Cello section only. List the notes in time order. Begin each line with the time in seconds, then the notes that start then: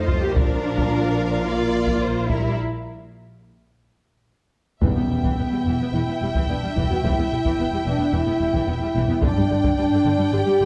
0.08 F4
0.23 G4
0.35 D4
1.45 F4
2.28 E4
4.83 E2
4.96 E2
5.11 E2
5.23 E2
5.39 E2
5.52 E2
5.66 E2
5.80 E2
5.93 E2
6.06 E2
6.21 E2
6.35 E2
6.49 E2
6.62 E2
6.77 E2
6.91 E2
7.03 E2
7.17 E2
7.31 E2
7.45 E2
7.58 E2
7.72 E2
7.85 E2
7.99 E2
8.13 E2
8.26 E2
8.40 E2
8.53 E2
8.67 E2
8.80 E2
8.94 E2
9.08 E2
9.22 G2
9.37 G2
9.50 G2
9.64 G2
9.78 G2
9.91 G2
10.05 G2
10.18 G2
10.32 G2
10.45 G2
10.60 G2